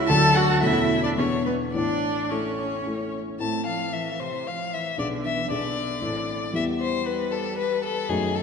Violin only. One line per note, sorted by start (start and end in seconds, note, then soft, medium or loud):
0.08 0.37 A5 medium
0.35 0.62 F#5 medium
0.62 1.03 E5 medium
1.03 1.09 D5 medium
1.17 1.45 C#5 medium
1.45 1.53 B4 medium
1.73 2.33 D5 medium
2.31 3.14 C#5 soft
3.40 3.65 A5 medium
3.66 3.94 F5 medium
3.93 4.22 E5 soft
4.20 4.49 C5 medium
4.47 4.75 F5 medium
4.73 4.98 E5 medium
4.99 5.07 D5 medium
5.25 5.50 E5 medium
5.50 6.53 D5 medium
6.55 6.63 E5 medium
6.81 7.07 C5 medium
7.06 7.33 B4 medium
7.32 7.57 A4 medium
7.58 7.83 B4 medium
7.84 8.11 A4 medium
8.09 8.37 G#4 medium
8.35 8.43 A4 medium